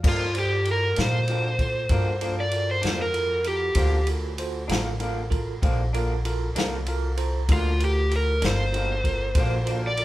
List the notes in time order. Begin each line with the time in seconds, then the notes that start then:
0.03 G2 F3 A#3 D4 F4 A4 A#4, kick, crash
0.09 F4
0.35 F4 A4 C5, ride
0.39 G4
0.65 F4 A4 A#4, ride
0.71 A#4
0.96 A#2 A#3 D4 F4 A4 A#4, snare, ride
1.01 F3 C5
1.28 G2 F3 A#3 D4 F4 A4 C5, ride
1.59 F4 A4 C5, kick, ride
1.89 G2 F3 A#3 D4 F4 A4 A#4, kick, ride
2.21 A#3 D4 F4 A4 A#4, ride
2.25 F3
2.40 D5
2.51 F4 A4 A#4, ride
2.71 C5
2.81 F2 F3 A#3 D4 F4 A4 C5, snare, ride
3.02 A#4
3.14 F4 A4 A#4, ride
3.44 F4 G4 A4 A#4, ride
3.75 D2 G2 F3 A#3 D4 F4 A4 C5, kick, ride
4.07 F4 A4 A#4, ride
4.38 F4 A4 C5, ride
4.68 A1 F3 A#3 D4 F4 A4 A#4, snare, ride
5.00 G2 F3 A#3 D4 F4 A4 A#4, ride
5.30 F4 A4 A#4, kick, ride
5.62 A#1 G2 F3 A#3 D4 F4 A4 C5, kick, ride
5.93 F3 A#3 D4 F4 A4 A#4, ride
6.25 F4 A4 A#4, ride
6.55 C2 F3 A#3 D4 F4 A4 A#4, snare, ride
6.86 F4 A4 A#4 F5, ride
7.17 F4 A4 C5 A#5, ride
7.49 D2 G2 F3 A#3 D4 F4 A4 A#4, kick, ride
7.53 F4
7.80 F4 A4 A#4, ride
7.85 G4
8.11 F4 A4 A#4, ride
8.16 A#4
8.42 G1 F3 A#3 D4 F4 A4 A#4 C5, snare, ride
8.72 G2 F3 A#3 F4 A4 A#4, ride
8.77 D4
9.04 F4 A4 A#4, kick, ride
9.35 A#1 G2 F3 A#3 D4 F4 A4 C5, kick, ride
9.65 D4 F4 A4 A#4, ride
9.70 F3 A#3
9.87 D5
9.97 F4 A4 A#4, ride